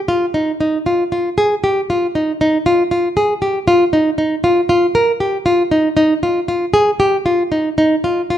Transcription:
0, 0, Header, 1, 2, 480
1, 0, Start_track
1, 0, Tempo, 511509
1, 1298, Time_signature, 7, 3, 24, 8
1, 6084, Tempo, 520833
1, 7831, End_track
2, 0, Start_track
2, 0, Title_t, "Nylon-string guitar"
2, 0, Program_c, 0, 24
2, 79, Note_on_c, 0, 65, 74
2, 236, Note_off_c, 0, 65, 0
2, 321, Note_on_c, 0, 63, 72
2, 479, Note_off_c, 0, 63, 0
2, 568, Note_on_c, 0, 63, 72
2, 725, Note_off_c, 0, 63, 0
2, 810, Note_on_c, 0, 65, 64
2, 967, Note_off_c, 0, 65, 0
2, 1052, Note_on_c, 0, 65, 62
2, 1208, Note_off_c, 0, 65, 0
2, 1292, Note_on_c, 0, 68, 77
2, 1448, Note_off_c, 0, 68, 0
2, 1536, Note_on_c, 0, 67, 67
2, 1691, Note_off_c, 0, 67, 0
2, 1782, Note_on_c, 0, 65, 77
2, 1935, Note_off_c, 0, 65, 0
2, 2020, Note_on_c, 0, 63, 72
2, 2173, Note_off_c, 0, 63, 0
2, 2262, Note_on_c, 0, 63, 80
2, 2414, Note_off_c, 0, 63, 0
2, 2497, Note_on_c, 0, 65, 72
2, 2650, Note_off_c, 0, 65, 0
2, 2734, Note_on_c, 0, 65, 67
2, 2888, Note_off_c, 0, 65, 0
2, 2972, Note_on_c, 0, 68, 81
2, 3126, Note_off_c, 0, 68, 0
2, 3208, Note_on_c, 0, 67, 68
2, 3362, Note_off_c, 0, 67, 0
2, 3449, Note_on_c, 0, 65, 81
2, 3602, Note_off_c, 0, 65, 0
2, 3688, Note_on_c, 0, 63, 76
2, 3841, Note_off_c, 0, 63, 0
2, 3924, Note_on_c, 0, 63, 77
2, 4078, Note_off_c, 0, 63, 0
2, 4165, Note_on_c, 0, 65, 72
2, 4319, Note_off_c, 0, 65, 0
2, 4404, Note_on_c, 0, 65, 74
2, 4558, Note_off_c, 0, 65, 0
2, 4645, Note_on_c, 0, 70, 82
2, 4799, Note_off_c, 0, 70, 0
2, 4883, Note_on_c, 0, 67, 70
2, 5038, Note_off_c, 0, 67, 0
2, 5121, Note_on_c, 0, 65, 78
2, 5276, Note_off_c, 0, 65, 0
2, 5362, Note_on_c, 0, 63, 72
2, 5517, Note_off_c, 0, 63, 0
2, 5598, Note_on_c, 0, 63, 81
2, 5754, Note_off_c, 0, 63, 0
2, 5846, Note_on_c, 0, 65, 75
2, 6000, Note_off_c, 0, 65, 0
2, 6084, Note_on_c, 0, 65, 76
2, 6236, Note_off_c, 0, 65, 0
2, 6316, Note_on_c, 0, 68, 87
2, 6470, Note_off_c, 0, 68, 0
2, 6557, Note_on_c, 0, 67, 73
2, 6710, Note_off_c, 0, 67, 0
2, 6797, Note_on_c, 0, 65, 74
2, 6950, Note_off_c, 0, 65, 0
2, 7036, Note_on_c, 0, 63, 71
2, 7191, Note_off_c, 0, 63, 0
2, 7278, Note_on_c, 0, 63, 73
2, 7434, Note_off_c, 0, 63, 0
2, 7520, Note_on_c, 0, 65, 72
2, 7676, Note_off_c, 0, 65, 0
2, 7761, Note_on_c, 0, 65, 68
2, 7831, Note_off_c, 0, 65, 0
2, 7831, End_track
0, 0, End_of_file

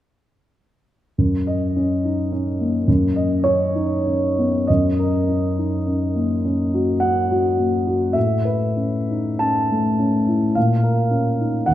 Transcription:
0, 0, Header, 1, 2, 480
1, 0, Start_track
1, 0, Tempo, 1181102
1, 477, Time_signature, 3, 2, 24, 8
1, 477, Tempo, 1132075
1, 1437, Tempo, 1219512
1, 2397, Tempo, 1138520
1, 3357, Tempo, 1255230
1, 3837, Tempo, 1151631
1, 4317, Tempo, 1102941
1, 4831, End_track
2, 0, Start_track
2, 0, Title_t, "Grand piano"
2, 0, Program_c, 0, 0
2, 481, Note_on_c, 0, 42, 35
2, 543, Control_c, 0, 64, 127
2, 603, Note_on_c, 0, 75, 29
2, 727, Note_on_c, 0, 61, 31
2, 797, Note_off_c, 0, 75, 0
2, 847, Note_on_c, 0, 63, 25
2, 917, Note_off_c, 0, 61, 0
2, 964, Note_off_c, 0, 63, 0
2, 964, Note_on_c, 0, 61, 36
2, 1085, Note_on_c, 0, 58, 30
2, 1150, Note_off_c, 0, 61, 0
2, 1181, Note_off_c, 0, 42, 0
2, 1199, Note_off_c, 0, 58, 0
2, 1199, Note_on_c, 0, 42, 47
2, 1204, Control_c, 0, 64, 0
2, 1275, Control_c, 0, 64, 127
2, 1319, Note_on_c, 0, 75, 36
2, 1437, Note_on_c, 0, 73, 61
2, 1441, Note_on_c, 0, 61, 41
2, 1510, Note_off_c, 0, 75, 0
2, 1561, Note_on_c, 0, 63, 34
2, 1632, Note_off_c, 0, 61, 0
2, 1683, Note_off_c, 0, 63, 0
2, 1685, Note_on_c, 0, 61, 33
2, 1810, Note_on_c, 0, 59, 31
2, 1882, Note_off_c, 0, 61, 0
2, 1913, Note_off_c, 0, 42, 0
2, 1923, Note_on_c, 0, 75, 50
2, 1927, Note_off_c, 0, 73, 0
2, 1930, Note_off_c, 0, 59, 0
2, 1933, Note_on_c, 0, 42, 34
2, 1934, Control_c, 0, 64, 0
2, 2003, Control_c, 0, 64, 127
2, 2049, Note_on_c, 0, 70, 29
2, 2165, Note_on_c, 0, 61, 28
2, 2237, Note_off_c, 0, 70, 0
2, 2282, Note_on_c, 0, 63, 24
2, 2352, Note_off_c, 0, 61, 0
2, 2397, Note_on_c, 0, 61, 29
2, 2398, Note_off_c, 0, 63, 0
2, 2516, Note_on_c, 0, 58, 26
2, 2594, Note_off_c, 0, 61, 0
2, 2638, Note_on_c, 0, 61, 31
2, 2714, Note_off_c, 0, 58, 0
2, 2762, Note_on_c, 0, 66, 27
2, 2834, Note_off_c, 0, 61, 0
2, 2870, Note_on_c, 0, 78, 52
2, 2880, Note_on_c, 0, 61, 27
2, 2882, Note_off_c, 0, 75, 0
2, 2954, Note_off_c, 0, 66, 0
2, 3002, Note_on_c, 0, 66, 31
2, 3071, Note_off_c, 0, 61, 0
2, 3119, Note_on_c, 0, 58, 26
2, 3190, Note_off_c, 0, 66, 0
2, 3238, Note_on_c, 0, 66, 27
2, 3309, Note_off_c, 0, 58, 0
2, 3343, Note_off_c, 0, 42, 0
2, 3348, Note_on_c, 0, 76, 51
2, 3350, Note_off_c, 0, 78, 0
2, 3353, Note_on_c, 0, 45, 35
2, 3358, Note_off_c, 0, 66, 0
2, 3365, Control_c, 0, 64, 0
2, 3435, Control_c, 0, 64, 127
2, 3471, Note_on_c, 0, 71, 31
2, 3591, Note_on_c, 0, 61, 29
2, 3668, Note_off_c, 0, 71, 0
2, 3721, Note_on_c, 0, 63, 24
2, 3789, Note_off_c, 0, 61, 0
2, 3831, Note_on_c, 0, 81, 59
2, 3833, Note_off_c, 0, 76, 0
2, 3836, Note_on_c, 0, 61, 31
2, 3840, Note_off_c, 0, 63, 0
2, 3963, Note_on_c, 0, 57, 29
2, 4036, Note_off_c, 0, 61, 0
2, 4080, Note_on_c, 0, 61, 36
2, 4154, Note_off_c, 0, 57, 0
2, 4199, Note_on_c, 0, 64, 29
2, 4269, Note_off_c, 0, 61, 0
2, 4299, Note_off_c, 0, 45, 0
2, 4314, Note_off_c, 0, 81, 0
2, 4314, Note_on_c, 0, 77, 60
2, 4316, Note_off_c, 0, 64, 0
2, 4320, Note_on_c, 0, 46, 37
2, 4326, Control_c, 0, 64, 0
2, 4383, Control_c, 0, 64, 127
2, 4436, Note_on_c, 0, 70, 31
2, 4555, Note_on_c, 0, 61, 31
2, 4629, Note_off_c, 0, 70, 0
2, 4684, Note_on_c, 0, 63, 28
2, 4748, Note_off_c, 0, 61, 0
2, 4784, Note_off_c, 0, 46, 0
2, 4796, Note_off_c, 0, 77, 0
2, 4796, Note_on_c, 0, 78, 61
2, 4800, Note_on_c, 0, 39, 38
2, 4801, Note_off_c, 0, 63, 0
2, 4806, Control_c, 0, 64, 0
2, 4831, Note_off_c, 0, 39, 0
2, 4831, Note_off_c, 0, 78, 0
2, 4831, End_track
0, 0, End_of_file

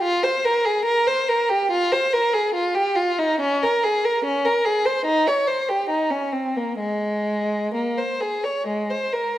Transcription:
0, 0, Header, 1, 2, 480
1, 0, Start_track
1, 0, Key_signature, -4, "major"
1, 0, Tempo, 837989
1, 18, Time_signature, 4, 2, 24, 8
1, 3378, Tempo, 927357
1, 5181, End_track
2, 0, Start_track
2, 0, Title_t, "Violin"
2, 0, Program_c, 0, 40
2, 15, Note_on_c, 0, 65, 68
2, 132, Note_off_c, 0, 65, 0
2, 133, Note_on_c, 0, 72, 57
2, 252, Note_off_c, 0, 72, 0
2, 257, Note_on_c, 0, 70, 61
2, 373, Note_on_c, 0, 68, 56
2, 374, Note_off_c, 0, 70, 0
2, 486, Note_on_c, 0, 70, 65
2, 492, Note_off_c, 0, 68, 0
2, 607, Note_off_c, 0, 70, 0
2, 615, Note_on_c, 0, 72, 59
2, 734, Note_off_c, 0, 72, 0
2, 736, Note_on_c, 0, 70, 56
2, 855, Note_on_c, 0, 67, 57
2, 856, Note_off_c, 0, 70, 0
2, 976, Note_off_c, 0, 67, 0
2, 980, Note_on_c, 0, 65, 68
2, 1096, Note_off_c, 0, 65, 0
2, 1099, Note_on_c, 0, 72, 61
2, 1218, Note_off_c, 0, 72, 0
2, 1220, Note_on_c, 0, 70, 61
2, 1338, Note_off_c, 0, 70, 0
2, 1339, Note_on_c, 0, 68, 57
2, 1456, Note_off_c, 0, 68, 0
2, 1456, Note_on_c, 0, 65, 62
2, 1573, Note_off_c, 0, 65, 0
2, 1575, Note_on_c, 0, 67, 59
2, 1694, Note_on_c, 0, 65, 56
2, 1696, Note_off_c, 0, 67, 0
2, 1819, Note_off_c, 0, 65, 0
2, 1824, Note_on_c, 0, 63, 60
2, 1947, Note_on_c, 0, 61, 67
2, 1949, Note_off_c, 0, 63, 0
2, 2070, Note_off_c, 0, 61, 0
2, 2079, Note_on_c, 0, 70, 60
2, 2197, Note_off_c, 0, 70, 0
2, 2198, Note_on_c, 0, 68, 59
2, 2314, Note_off_c, 0, 68, 0
2, 2317, Note_on_c, 0, 70, 56
2, 2430, Note_on_c, 0, 61, 60
2, 2432, Note_off_c, 0, 70, 0
2, 2544, Note_off_c, 0, 61, 0
2, 2548, Note_on_c, 0, 70, 54
2, 2663, Note_off_c, 0, 70, 0
2, 2664, Note_on_c, 0, 68, 55
2, 2779, Note_off_c, 0, 68, 0
2, 2779, Note_on_c, 0, 72, 53
2, 2894, Note_on_c, 0, 63, 68
2, 2895, Note_off_c, 0, 72, 0
2, 3010, Note_off_c, 0, 63, 0
2, 3020, Note_on_c, 0, 73, 57
2, 3135, Note_on_c, 0, 72, 47
2, 3136, Note_off_c, 0, 73, 0
2, 3256, Note_off_c, 0, 72, 0
2, 3259, Note_on_c, 0, 67, 44
2, 3374, Note_on_c, 0, 63, 47
2, 3380, Note_off_c, 0, 67, 0
2, 3485, Note_on_c, 0, 61, 42
2, 3487, Note_off_c, 0, 63, 0
2, 3601, Note_on_c, 0, 60, 41
2, 3604, Note_off_c, 0, 61, 0
2, 3722, Note_off_c, 0, 60, 0
2, 3723, Note_on_c, 0, 58, 36
2, 3839, Note_on_c, 0, 56, 47
2, 3845, Note_off_c, 0, 58, 0
2, 4321, Note_off_c, 0, 56, 0
2, 4331, Note_on_c, 0, 58, 41
2, 4450, Note_off_c, 0, 58, 0
2, 4454, Note_on_c, 0, 72, 37
2, 4572, Note_on_c, 0, 68, 36
2, 4573, Note_off_c, 0, 72, 0
2, 4692, Note_off_c, 0, 68, 0
2, 4694, Note_on_c, 0, 73, 37
2, 4813, Note_on_c, 0, 56, 39
2, 4814, Note_off_c, 0, 73, 0
2, 4932, Note_off_c, 0, 56, 0
2, 4932, Note_on_c, 0, 72, 40
2, 5051, Note_on_c, 0, 70, 36
2, 5056, Note_off_c, 0, 72, 0
2, 5176, Note_off_c, 0, 70, 0
2, 5181, End_track
0, 0, End_of_file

